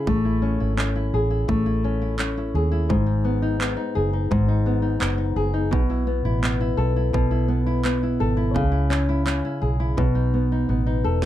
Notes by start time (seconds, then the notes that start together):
Already playing: C#3 C#4 E4 G#4
0.07 A1 A3, kick
0.25 E4
0.42 C#4
0.60 G#1 E4
0.77 C#4, clap
0.96 E4
1.13 A1 G#4
1.30 E4
1.48 A1 A3, kick
1.66 E4
1.84 C#4
2.02 E4
2.19 C#4, clap
2.37 E4
2.54 D#2 G#4
2.72 E4
2.89 G#1 G#2, kick
3.06 D#4
3.24 B3
3.42 D#4
3.60 B3, clap
3.77 D#4
3.95 F#1 G#4
4.13 D#4
4.31 G#1 G#2, kick
4.48 D#4
4.66 B3
4.82 D#4
4.99 F#1 B3, clap
5.18 D#4
5.36 F#1 G#4
5.54 D#4
5.71 B1 B2, kick
5.90 E4
6.07 B3
6.25 A1 E4
6.43 B3, clap
6.60 E4
6.77 B1 A4
6.96 E4
7.13 B1 B2, kick
7.31 E4
7.48 B3
7.66 E4
7.85 B3, clap
8.03 E4
8.20 G#1 A4
8.37 E4
8.54 C#2 C#3, kick
8.72 E4
8.90 C#4, clap
9.09 E4
9.26 C#4, clap
9.45 E4
9.62 B1 G#4
9.80 E4
9.97 B1 B2, kick
10.15 D#4
10.34 B3
10.52 D#4
10.69 A1 B3
10.87 D#4
11.04 E1 A4
11.22 snare